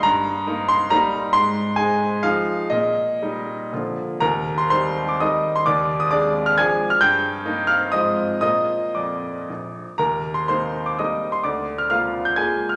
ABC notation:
X:1
M:3/4
L:1/16
Q:1/4=127
K:Eb
V:1 name="Grand piano"
b6 c'2 b4 | c'4 a4 f4 | e8 z4 | [Bb]3 c' [cc']3 d' [ee']3 c' |
[dd']3 e' [dd']3 f' [aa']3 f' | [gg']6 [ff']2 [ee']4 | [ee']4 [dd']4 z4 | [Bb]3 c' [cc']3 d' [ee']3 c' |
[dd']3 f' [ff']3 g' [aa']3 f' |]
V:2 name="Grand piano" clef=bass
G,,4 [B,E]4 [G,B,E]4 | A,,4 [A,E]4 [F,A,E]4 | B,,4 [G,E]4 [B,,D,F,F]4 | E,,4 [G,E]4 [E,G,E]4 |
E,,4 [A,D]4 [F,A,D]4 | G,,4 [B,E]4 [A,,F,CF]4 | [B,,B,F]4 F,,4 B,,,4 | E,,4 [B,E]4 [G,B,E]4 |
D,,4 [B,F]4 [A,B,F]4 |]